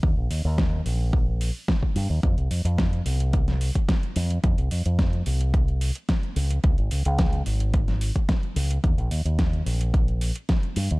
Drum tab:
HH |--o---o---o---o-|xxoxxxoxxxoxxxox|xxoxxxoxxxoxxxox|xxoxxxoxxxoxxxox|
SD |----o-------o---|----o----o--o---|----o-------o---|----o----o--o---|
BD |o---o---o---oo--|o---o---o--oo---|o---o---o---o---|o---o---o--oo---|

HH |xxoxxxoxxxoxxxox|
SD |----o-------o---|
BD |o---o---o---o---|